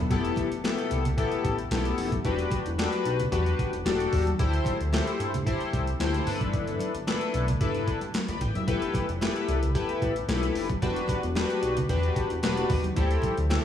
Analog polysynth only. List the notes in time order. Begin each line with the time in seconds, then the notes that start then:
0.10 B3 E4 G4 A4
0.64 B3 E4 G4 A4
1.17 B3 E4 G4 A4
1.71 B3 E4 G4 A4
2.24 D4 F#4 G4 B4
2.78 D4 F#4 G4 A4
2.85 B4
3.32 D4 F#4 G4 B4
3.85 D4 F#4 G4 A4
4.39 E4 G4 A4 C5
4.92 E4 G4 A4 C5
5.46 E4 G4 A4 C5
6.00 E4 G4 A4 C5
6.27 D4 E4 A4 B4
7.07 D4 E4 A4 B4
7.61 D4 E4 A4 B4
8.29 D5 B5
8.41 B4 G5
8.55 G4 E5
8.67 E4 G4 A4 B4
9.21 E4 G4 A4 B4
9.75 E4 G4 A4 B4
10.28 E4 G4 A4 B4
10.82 D4 F#4 G4 B4
11.36 D4 F#4 G4 B4
11.89 D4 F#4 G4 B4
12.42 D4 F#4 G4 B4
12.96 C4 E4 G4 A4
13.50 C4 E4 G4 A4